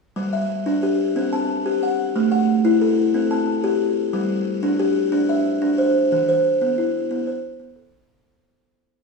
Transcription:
0.16 G3
0.33 E5
0.66 D4
0.83 G4
1.16 C4
1.33 A5
1.66 G4
1.83 F#5
2.16 A3
2.32 F#5
2.65 E4
2.81 A4
3.14 C4
3.31 A5
3.64 G4
4.13 G3
4.63 D4
4.79 G4
5.12 D4
5.29 E5
5.62 D4
5.78 C5
6.12 E3
6.29 C5
6.61 B3
6.78 E4
7.11 B3
7.27 C5
7.60 B3
7.76 A4

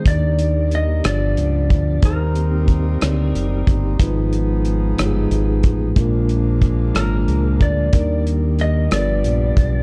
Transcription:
Already playing: D#3
0.05 D#2 D#3 G3 A#3 D4 D#4 G4 D5, kick, closed hi-hat
0.39 closed hi-hat
0.71 D#5, closed hi-hat
1.04 G1 G2 F3 G#3 B3 D4 F4 G4 D5, cross-stick, closed hi-hat
1.11 B3
1.37 C#2, closed hi-hat
1.70 D2, kick, closed hi-hat
2.02 D#2 D#3 A#3 C4 D#4 G4 A#4 C5, kick, closed hi-hat
2.35 closed hi-hat
2.68 kick, closed hi-hat
3.01 D2 A#3 C4 D#4 G4 D5, cross-stick, closed hi-hat
3.34 F#1, closed hi-hat
3.67 G1, kick, closed hi-hat
3.99 G#1 G#2 F3 G#3 B3 D#4 F4 G#4 B4, kick, closed hi-hat
4.33 closed hi-hat
4.65 closed hi-hat
4.97 G1 G#3 B3 D#4 F4 G4, cross-stick, closed hi-hat
5.06 G#4
5.31 G#1, closed hi-hat
5.63 A1, kick, closed hi-hat
5.95 A#1 A#2 G#3 A#3 D4 F4 A#4, kick, closed hi-hat
6.29 closed hi-hat
6.62 kick, closed hi-hat
6.93 G#1 G#3 A#3 D4 F4 A#4, cross-stick, closed hi-hat
7.28 C#2, closed hi-hat
7.61 D2 D5, kick, closed hi-hat
7.92 D#2 D#3 G3 A#3 D4 D#4 G4 A#4, kick, closed hi-hat
8.27 closed hi-hat
8.59 D#5, closed hi-hat
8.90 G1 G2 F3 G3 B3 D4 F4 A#4 D5, cross-stick, closed hi-hat
8.99 B4
9.24 A#1, closed hi-hat
9.57 B1, kick, closed hi-hat

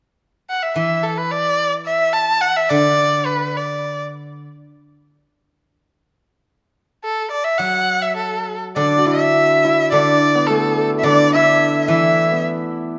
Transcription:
0.50 F#5
0.63 E5
0.76 E3 E5
1.03 A4
1.18 B4
1.31 D5
1.86 E5
2.13 A5
2.41 F#5
2.56 E5
2.70 D3 D5
3.26 B4
3.57 D5
7.04 A4
7.31 D5
7.44 E5
7.58 F#3 F#5
8.02 E5
8.17 A4
8.76 D3 D4 D5
8.98 F#4
9.05 E4 E5
9.65 E4
9.92 D3 D4 D5
10.35 B3
10.47 A3 A4
10.99 E5
11.03 D3 D4 D5
11.33 E4 E5
11.88 E3 E4 E5
12.32 B3

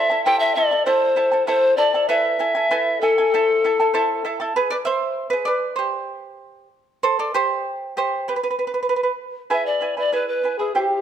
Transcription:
Already playing: E4 C5 E5
0.10 E4 A4 A5
0.25 E4 G4 A4 C5 G5 A5
0.39 E5
0.55 E4 A4 C5 D5 A5
0.71 E4 A4 A5
0.85 E4 A4 C5 E5 A5
1.16 E4 A4 E5 A5
1.32 E4 A4 A5
1.47 E4 A4 C5 E5 A5
1.77 E4 A4 D5 E5 A5
1.94 E4 A4 A5
2.08 E4 A4 B4 E5 G#5
2.39 E4 A4 E5 G#5
2.55 E4 A4 G#5
2.71 E4 A4 B4 E5 G#5
3.01 E4 A4 E5 G#5
3.18 E4 A4 G#5
3.34 E4 A4 C5 E5 A5
3.64 E4 A4 E5 A5
3.80 E4 A4 A5
3.94 E4 A4 C5 E5 A5
4.25 E4 A4 E5 A5
4.40 E4 A4 A5
4.56 G#4 B4
4.70 B4 D5
4.85 C5 E5
5.30 G#4 B4
5.45 B4 D5
5.76 G4 C5
7.03 A4 C5
7.19 A4 D5
7.34 G4 C5
7.97 G4 C5
8.28 G4 B4
8.36 B4
8.44 B4
8.51 B4
8.59 B4
8.67 B4
8.74 B4
8.83 B4
8.89 B4
8.96 B4
9.03 B4
9.50 E4 G#4 B4 E5 G#5
9.66 D5
9.81 E4 B4 E5 G#5
9.97 E4 B4 D5 G#5
10.12 E4 G#4 B4 E5 G#5
10.28 B4
10.44 E4 B4 E5 G#5
10.59 E4 G#4 B4 G#5
10.75 E4 G4 C5 E5 G5

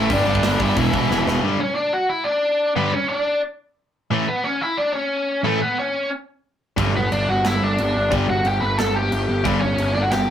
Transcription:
Already playing: A1 E5
0.10 G1 G2 D3 G3 D4 D5, kick, open hi-hat
0.27 G1 G2 D3 G3
0.35 kick
0.43 G1 G2 D3 G3, snare, open hi-hat
0.60 G1 G2 D3 G3 E4 E5, kick
0.76 E1 E2 B2 E3, kick, open hi-hat
0.94 E2 B2 E3, kick
1.10 E1 E2 B2 E3, snare
1.27 E1 E2 B2 E3, snare
1.44 G2 D3 G3
1.60 C#4 C#5
1.75 D4 D5
1.93 F#4 F#5
2.09 E4 E5
2.24 D4 D5
2.75 G2 D3 G3 B3 B4
2.92 C#4 C#5
3.08 D4 D5
4.11 A2 E3 A3
4.28 B3 B4
4.44 C#4 C#5
4.61 E4 E5
4.77 D4 D5
4.93 C#4 C#5
5.44 A2 E3 A3 A4
5.61 B3 B4
5.79 C#4 C#5
6.77 G1 G2 D3 G3, kick, crash
6.96 B3 B4
7.12 G1 D4 D5, crash
7.29 G1 F#4 F#5
7.45 G1 E4 E5, snare, crash
7.62 G1 D4 D5
7.78 G1, crash
7.96 G1
8.11 G1 G2 D3 G3, kick, crash
8.29 G1 F#4 F#5
8.45 G1 G4 G5, crash
8.61 G1 B4 B5
8.77 G1 A4 A5, snare, crash
8.96 G4 G5
9.12 G1, crash
9.29 G1
9.44 G1 G2 D3 G3, kick, crash
9.60 C#4 C#5
9.78 G1, crash
9.94 G1 D4 D5
10.03 F#4 F#5
10.11 G1 G4 G5, snare, crash

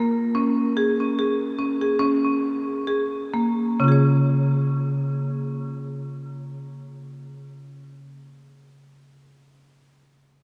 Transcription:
0.00 A#3
0.35 C#4
0.77 G#4
1.00 C#4
1.19 G#4
1.59 C#4
1.82 G#4
1.99 C#4
2.25 C#4
2.87 G#4
3.34 A#3
3.80 C#3 C#4
3.84 F4
3.88 G#4 C#5

